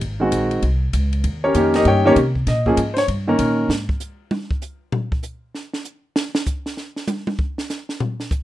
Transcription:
0.01 upright bass G#1, kick, ride
0.20 grand piano D#3 G#3 C4 F#4
0.32 upright bass A#1, kick, hi-hat pedal, ride
0.51 ride
0.62 upright bass C2, kick, ride
0.93 upright bass C#2, kick, hi-hat pedal, ride
1.13 ride
1.24 upright bass D#2, kick, ride
1.44 grand piano C#4 G4 A#4 C#5
1.54 upright bass F2, grand piano D#3 A#3 C#4 G4, kick, hi-hat pedal, ride
1.74 grand piano D#4 G4 A#4 D#5, snare, ride
1.85 upright bass G2, grand piano G4 C#5 D#5 G5, kick, ride
2.05 grand piano D#3 A#3 C#4 G4 A#4 C#5
2.16 upright bass C3, kick, hi-hat pedal, ride
2.35 kick
2.47 upright bass A#2, grand piano D#5, kick, snare, ride
2.66 grand piano F3 A#3 C#4 G#4, kick
2.77 upright bass G#2, kick, hi-hat pedal, ride
2.94 grand piano C5, snare, ride
2.98 grand piano C#5
3.08 upright bass G2, kick, ride
3.27 grand piano D#3 A#3 C#4 A#4
3.39 upright bass A#2, kick, hi-hat pedal, ride
3.69 upright bass G#2, snare
3.89 kick
4.00 hi-hat pedal
4.31 high tom
4.51 kick
4.62 hi-hat pedal
4.92 floor tom
5.12 kick
5.23 hi-hat pedal
5.55 snare
5.73 snare
5.85 hi-hat pedal
6.16 snare
6.35 snare
6.46 kick, hi-hat pedal
6.66 snare
6.77 snare
6.96 snare
7.07 hi-hat pedal, high tom
7.27 high tom
7.39 kick
7.58 snare
7.70 snare, hi-hat pedal
7.89 snare
8.00 floor tom
8.20 snare
8.31 kick, hi-hat pedal

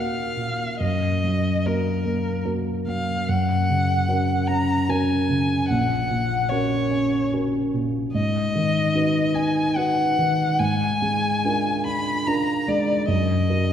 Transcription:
Already playing: grand piano D#2 A#2 A#3 F#4 A#4, violin F5
0.37 grand piano A#2
0.80 grand piano F#2, violin D#5
1.24 grand piano F#3
1.66 grand piano A#3 F#4 A#4, violin A#4
2.06 grand piano A#3
2.45 grand piano A#3 F#4 A#4
2.87 grand piano F#3, violin F5
3.29 grand piano F#2, violin F#5
3.70 grand piano C#3
4.09 grand piano C#4 F#4 A#4
4.48 grand piano C#4, violin A#5
4.89 grand piano C#4 F#4 A#4, violin G#5
5.29 grand piano C#3
5.69 grand piano A#1, violin F#5
6.10 grand piano A#2
6.49 grand piano C#4 F#4 A#4, violin C#5
6.91 grand piano C#4
7.33 grand piano C#4 F#4 A#4
7.74 grand piano A#2
8.14 grand piano G#2, violin D#5
8.55 grand piano D#3
8.95 grand piano D#4 F#4 B4
9.34 grand piano D#4, violin G#5
9.76 grand piano D#4 F#4 B4, violin F#5
10.19 grand piano D#3
10.59 grand piano G#2, violin G#5
11.02 grand piano G#3
11.45 grand piano D4 F4 A#4
11.86 grand piano D4, violin B5
12.27 grand piano D4 F4 A#4, violin A#5
12.68 grand piano G#3, violin D5
13.08 grand piano F#2, violin D#5
13.50 grand piano F#4 A#4

